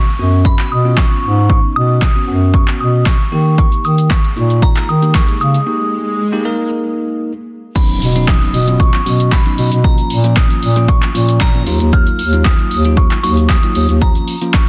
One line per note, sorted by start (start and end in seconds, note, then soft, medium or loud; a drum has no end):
0.00 0.47 C#6 medium
0.19 0.55 F#2 medium
0.19 0.73 B3 medium
0.19 0.73 C#4 medium
0.19 0.73 F#4 medium
0.45 0.72 B5 medium
0.45 kick loud
0.59 clap medium
0.71 1.07 B2 medium
0.71 0.98 D#6 loud
0.85 1.39 B3 medium
0.85 1.39 C#4 medium
0.85 1.39 F4 medium
0.97 1.49 C#6 medium
0.97 kick loud
0.97 snare medium
0.97 clap loud
1.23 1.59 G#2 medium
1.49 2.03 B3 medium
1.49 2.03 C#4 medium
1.49 2.04 D#4 medium
1.49 1.74 C#6 medium
1.49 kick loud
1.76 2.11 B2 medium
1.76 2.56 D#6 loud
2.02 kick loud
2.02 snare medium
2.02 clap loud
2.15 2.26 B3 medium
2.15 2.26 C#4 medium
2.15 2.26 F#4 medium
2.28 2.64 F#2 medium
2.28 3.14 B3 medium
2.28 3.14 C#4 medium
2.28 3.14 F#4 medium
2.54 2.81 C#6 loud
2.54 kick loud
2.68 clap medium
2.80 3.16 B2 medium
2.80 3.05 D#6 loud
3.06 3.58 C#6 loud
3.06 kick loud
3.06 snare medium
3.06 clap loud
3.32 3.68 D#3 medium
3.32 4.19 A#3 medium
3.32 4.19 D#4 medium
3.32 4.19 G4 medium
3.58 3.85 C#6 medium
3.58 kick loud
3.58 swell medium
3.58 shaker medium
3.72 closed hi-hat medium
3.72 shaker medium
3.84 4.20 D#3 medium
3.84 4.11 D#6 loud
3.84 shaker medium
3.98 closed hi-hat medium
3.98 shaker medium
4.10 4.59 C#6 loud
4.10 kick loud
4.10 snare medium
4.10 clap loud
4.10 shaker medium
4.24 closed hi-hat medium
4.24 shaker soft
4.36 4.72 A#2 medium
4.36 4.90 A#3 medium
4.36 4.90 D#4 medium
4.36 4.90 F4 medium
4.36 shaker medium
4.50 closed hi-hat medium
4.50 shaker medium
4.62 4.87 A#5 medium
4.62 kick loud
4.62 shaker medium
4.76 clap medium
4.76 closed hi-hat medium
4.76 shaker medium
4.89 5.25 D#3 medium
4.89 5.16 D#6 loud
4.89 shaker medium
5.02 5.56 A#3 medium
5.02 5.56 D#4 medium
5.02 5.56 G4 medium
5.02 closed hi-hat medium
5.02 shaker medium
5.15 5.39 C#6 medium
5.15 kick loud
5.15 snare medium
5.15 clap loud
5.15 shaker medium
5.28 closed hi-hat medium
5.28 shaker medium
5.41 5.59 C#3 medium
5.41 7.20 D#6 medium
5.41 shaker medium
5.54 closed hi-hat medium
5.54 shaker medium
5.66 6.21 A#3 medium
5.66 6.21 D#4 medium
5.66 6.21 G4 medium
6.32 6.43 A#3 medium
6.32 6.43 D#4 medium
6.32 6.43 G4 loud
6.45 7.32 A#3 medium
6.45 7.32 D#4 medium
6.45 7.32 A#4 loud
7.75 8.08 F#3 medium
7.75 8.08 B3 medium
7.75 8.08 C#4 medium
7.75 8.08 D#4 medium
7.75 8.29 B5 medium
7.75 kick loud
7.75 crash loud
7.75 impact medium
7.75 shaker medium
7.90 closed hi-hat medium
7.90 shaker medium
8.02 8.38 B2 medium
8.02 open hi-hat medium
8.02 shaker medium
8.15 8.58 F#3 medium
8.15 8.58 B3 medium
8.15 8.58 C#4 medium
8.15 8.58 D#4 medium
8.15 closed hi-hat medium
8.15 shaker medium
8.28 8.76 D#6 medium
8.28 kick loud
8.28 snare medium
8.28 clap loud
8.28 shaker medium
8.42 closed hi-hat medium
8.42 shaker medium
8.54 8.90 B2 loud
8.54 open hi-hat medium
8.54 shaker medium
8.67 8.99 F#3 medium
8.67 9.00 B3 medium
8.67 9.00 C#4 medium
8.67 9.00 F4 medium
8.67 closed hi-hat medium
8.67 shaker medium
8.80 9.34 C#6 medium
8.80 kick loud
8.80 shaker medium
8.94 clap medium
8.94 closed hi-hat medium
8.94 shaker medium
9.06 9.42 B2 medium
9.06 9.39 F#3 medium
9.06 9.39 B3 medium
9.06 9.39 C#4 medium
9.06 9.39 F#4 medium
9.06 open hi-hat medium
9.06 shaker medium
9.20 closed hi-hat medium
9.20 shaker medium
9.32 9.69 B5 medium
9.32 kick loud
9.32 snare medium
9.32 clap loud
9.32 shaker medium
9.46 9.78 F#3 medium
9.46 9.78 B3 medium
9.46 9.78 C#4 medium
9.46 9.78 D#4 medium
9.46 closed hi-hat medium
9.46 shaker medium
9.58 9.68 B2 medium
9.58 open hi-hat medium
9.58 shaker medium
9.72 9.98 B2 medium
9.72 closed hi-hat medium
9.72 shaker medium
9.84 10.17 F3 medium
9.84 10.17 A#3 medium
9.84 10.17 C#4 medium
9.84 10.17 F4 medium
9.84 10.33 A#5 medium
9.84 kick loud
9.84 shaker medium
9.98 closed hi-hat medium
9.98 shaker medium
10.10 10.46 A#2 medium
10.10 open hi-hat medium
10.10 shaker medium
10.24 10.67 F3 medium
10.24 10.67 A#3 medium
10.24 10.67 C#4 medium
10.24 10.67 F4 medium
10.24 closed hi-hat medium
10.24 shaker medium
10.36 10.90 D#6 loud
10.36 kick loud
10.36 snare medium
10.36 clap loud
10.36 shaker medium
10.50 closed hi-hat medium
10.50 shaker medium
10.63 10.98 A#2 loud
10.63 open hi-hat medium
10.63 shaker medium
10.76 11.08 F3 medium
10.76 11.08 A#3 medium
10.76 11.08 C#4 medium
10.76 11.08 F4 medium
10.76 closed hi-hat medium
10.76 shaker medium
10.88 11.43 C#6 loud
10.88 kick loud
10.88 shaker medium
11.02 clap medium
11.02 closed hi-hat medium
11.02 shaker medium
11.14 11.69 A#2 medium
11.14 11.47 F3 medium
11.14 11.47 A#3 medium
11.14 11.47 C#4 medium
11.14 11.47 F4 medium
11.14 open hi-hat medium
11.14 shaker medium
11.29 closed hi-hat medium
11.29 shaker medium
11.41 11.78 A#5 loud
11.41 kick loud
11.41 snare loud
11.41 clap loud
11.41 shaker medium
11.54 11.67 F3 medium
11.54 11.66 A#3 medium
11.54 11.67 C#4 medium
11.54 11.66 F4 medium
11.54 closed hi-hat medium
11.54 shaker medium
11.66 11.77 D#2 medium
11.66 12.21 F#3 medium
11.66 12.21 A#3 medium
11.66 12.21 D#4 medium
11.66 12.21 F4 medium
11.66 open hi-hat medium
11.66 shaker medium
11.80 12.07 D#2 medium
11.80 closed hi-hat medium
11.80 shaker medium
11.93 12.47 F6 loud
11.93 kick loud
11.93 shaker medium
12.07 closed hi-hat medium
12.07 shaker medium
12.19 12.55 D#2 loud
12.19 open hi-hat medium
12.19 shaker medium
12.33 12.75 F#3 medium
12.33 12.75 A#3 medium
12.33 12.75 D#4 medium
12.33 12.76 F4 medium
12.33 closed hi-hat medium
12.33 shaker medium
12.45 12.99 D#6 loud
12.45 kick loud
12.45 snare medium
12.45 clap loud
12.45 shaker medium
12.59 closed hi-hat medium
12.59 shaker soft
12.71 13.07 D#2 loud
12.71 open hi-hat medium
12.71 shaker medium
12.85 13.17 F#3 medium
12.85 13.17 A#3 medium
12.85 13.17 D#4 medium
12.85 13.17 F4 medium
12.85 closed hi-hat medium
12.85 shaker medium
12.97 13.22 C#6 loud
12.97 kick loud
12.97 shaker medium
13.11 clap medium
13.11 closed hi-hat medium
13.11 shaker medium
13.23 13.59 D#2 medium
13.23 13.56 F#3 medium
13.23 13.56 A#3 medium
13.23 13.56 D#4 medium
13.23 13.56 F#4 medium
13.23 13.50 C#6 loud
13.23 open hi-hat medium
13.23 shaker medium
13.37 closed hi-hat medium
13.37 shaker medium
13.49 13.87 D#6 loud
13.49 kick loud
13.49 snare medium
13.49 clap loud
13.49 shaker medium
13.63 13.95 F#3 medium
13.63 13.95 A#3 medium
13.63 13.95 D#4 medium
13.63 13.95 F4 medium
13.63 closed hi-hat medium
13.63 shaker medium
13.75 13.85 D#2 medium
13.75 open hi-hat medium
13.75 shaker medium
13.89 14.16 D#2 medium
13.89 closed hi-hat medium
13.89 shaker medium
14.01 14.34 F3 medium
14.01 14.34 A#3 medium
14.01 14.34 C#4 medium
14.01 14.35 F4 medium
14.01 14.55 A#5 medium
14.01 kick loud
14.01 shaker medium
14.15 closed hi-hat medium
14.15 shaker medium
14.28 open hi-hat medium
14.28 shaker medium
14.41 14.69 F3 medium
14.41 14.69 A#3 medium
14.41 14.69 C#4 medium
14.41 14.69 F4 medium
14.41 closed hi-hat medium
14.41 shaker medium
14.54 14.69 C#6 medium
14.54 kick loud
14.54 snare medium
14.54 clap loud
14.54 shaker medium